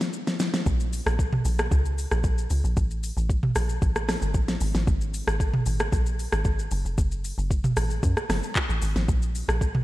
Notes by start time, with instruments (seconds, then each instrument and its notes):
0.01 snare, shaker
0.13 shaker
0.27 snare, shaker
0.40 snare, shaker
0.54 snare, shaker
0.66 log drum bass A#1, kick, shaker
0.80 shaker
0.93 open hi-hat, shaker
1.06 log drum bass A#1, cross-stick, shaker
1.19 kick, shaker
1.33 mid tom
1.45 log drum bass A#1, open hi-hat, shaker
1.59 cross-stick, shaker
1.71 log drum bass C#2, kick, shaker
1.85 shaker
1.98 open hi-hat, shaker
2.11 log drum bass A#1, cross-stick, shaker
2.24 log drum bass A#1, kick, shaker
2.38 shaker
2.50 log drum bass C#2, open hi-hat, shaker
2.64 log drum bass A#1, shaker
2.77 log drum bass A1, kick, shaker
2.91 shaker
3.03 open hi-hat, shaker
3.17 log drum bass A1, shaker
3.30 kick, shaker
3.43 mid tom
3.55 log drum bass A#1, cross-stick, open hi-hat, shaker
3.69 shaker
3.82 log drum bass A1, kick, shaker
3.96 cross-stick, shaker
4.09 cross-stick, snare, open hi-hat, shaker
4.22 log drum bass G1, shaker
4.34 log drum bass A1, kick, shaker
4.48 snare, shaker
4.61 log drum bass G#1, open hi-hat, shaker
4.75 log drum bass G#1, snare, shaker
4.87 log drum bass G#1, kick, shaker
5.01 shaker
5.14 open hi-hat, shaker
5.27 log drum bass G#1, cross-stick, shaker
5.40 kick, shaker
5.54 mid tom
5.66 log drum bass G#1, open hi-hat, shaker
5.80 cross-stick, shaker
5.92 log drum bass A#1, kick, shaker
6.06 shaker
6.19 open hi-hat, shaker
6.32 log drum bass G#1, cross-stick, shaker
6.45 log drum bass G#1, kick, shaker
6.59 shaker
6.71 log drum bass F#1, open hi-hat, shaker
6.85 log drum bass F1, shaker
6.98 log drum bass F#1, kick, shaker
7.12 shaker
7.25 open hi-hat, shaker
7.38 log drum bass F#1, shaker
7.51 kick, shaker
7.64 mid tom, shaker
7.77 log drum bass A1, cross-stick, open hi-hat, shaker
7.90 shaker
8.03 log drum bass F#2, kick, shaker
8.17 cross-stick, shaker
8.29 log drum bass F#1, cross-stick, snare, open hi-hat, shaker
8.43 shaker
8.55 kick, clap, shaker
8.69 log drum bass A1, shaker
8.82 log drum bass G#1, open hi-hat, shaker
8.96 log drum bass G#1, snare, shaker
9.08 log drum bass A#1, kick, shaker
9.22 shaker
9.35 open hi-hat, shaker
9.48 log drum bass A#1, cross-stick, shaker
9.61 kick, shaker
9.75 mid tom